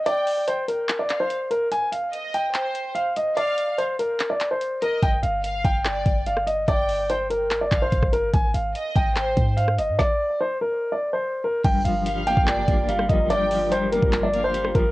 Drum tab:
CC |----------------|----------------|----------------|----------------|
HH |x-o-x-x-x-x-x-x-|x-x-x-x-x-x-x-x-|x-x-x-x-x-x-x-x-|x-x-x-x-x-x-x-x-|
CP |--------x-x-----|--------x-------|--------x-x-----|--------x-------|
SD |----------------|----------------|----------------|--------r----r--|
BD |----------------|----------------|----------------|o-----o---o-----|

CC |----------------|----------------|----------------|x---------------|
HH |x-o-x-x-x-x-x-x-|x-x-x-x-x-x-x-x-|----------------|x-x-x-x-x-x-x-x-|
CP |--------x-x-----|--------x-------|----------------|--------x-------|
SD |--------r----r--|--------r----r--|o---------------|--------r----r--|
BD |o---------o-oo--|o-----o---o-----|o---------------|o------o--o---o-|

CC |----------------|
HH |x-o-x-x-x-x-x-x-|
CP |--------x-------|
SD |--------r----r--|
BD |-------o------o-|